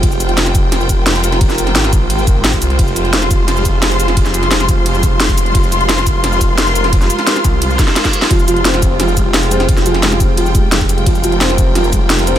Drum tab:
RD |b-b-b-b-b-b-b-b-|b-b-b-b-b-b-b-b-|b-b-b-b-b-b-b-b-|b-b-b-b-b-b-b-b-|
HH |x-xxx-x-x-x-x-xx|x-xxx-x-x-x-x-xx|x-xxx-x-x-x-x-xx|x-xxx-x-x-x-x-xx|
SH |-xx--xx--xx--xx-|-xx--xx--xx--xx-|-xx--xx--xx--xx-|-xx--xx--xx--xx-|
SD |----oo--o---o--o|-o-ooo------o---|----oo--o---o--o|-o-ooo------o---|
BD |o-----o---o-----|o-----o---o--o--|o-----o---o-----|o-----o---o--o--|

RD |b-b-b-b-b-b-b-b-|b-b-b-b-b-b-b-b-|b-b-b-b-b-b-b-b-|b-b-b-b-b-b-b-b-|
HH |x-xxx-x-x-x-x-xx|x-xxx-x-x-x-xxxx|x-xxx-x-x-x-x-xx|x-xxx-x-x-x-x-xx|
SH |-xx--xx--xx--xx-|-xx--xx--xx--xx-|-xx--xx--xx--xx-|-xx--xx--xx--xx-|
SD |----oo--o---o--o|-o-ooo----oooo-o|----oo--o---o--o|-o-ooo------o---|
BD |o-----o---o-----|o-----o---o--o--|o-----o---o-----|o-----o---o--o--|

RD |b-b-b-b-b-b-b-b-|
HH |x-xxx-x-x-x-x-xx|
SH |-xx--xx--xx--xx-|
SD |----oo--o---o--o|
BD |o-----o---o-----|